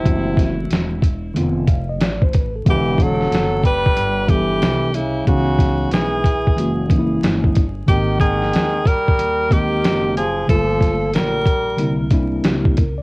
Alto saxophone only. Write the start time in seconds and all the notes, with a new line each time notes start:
Already playing: E4
2.70 G4
3.03 A4
3.66 B4
4.30 G4
4.95 E4
5.28 F#4
5.93 G#4
7.88 G4
8.21 G#4
8.87 A#4
9.53 G4
10.17 G#4
10.50 A4
11.15 A#4